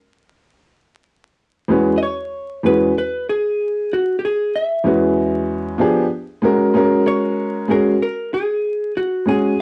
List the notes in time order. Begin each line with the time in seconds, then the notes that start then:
Already playing: A#4
1.68 E2 G#3 C#4 F#4 B4
1.98 D#5
2.03 C#5
2.63 E2 G#3 C#4 F#4 B4
2.98 B4
3.29 G#4
3.93 F#4
4.19 G4
4.25 G#4
4.55 E5
4.84 E2 G#3 C#4 F#4 B4
5.78 F3 B3 D4 G4 G#4
6.42 G#3 C#4 F#4 A#4
6.74 G#3 C#4 F#4 A#4
7.08 C#5
7.68 G#3 C#4 F#4 G#4 A#4
8.02 A#4
8.34 G#4
8.97 F#4
9.26 G#3 C#4 F#4 G#4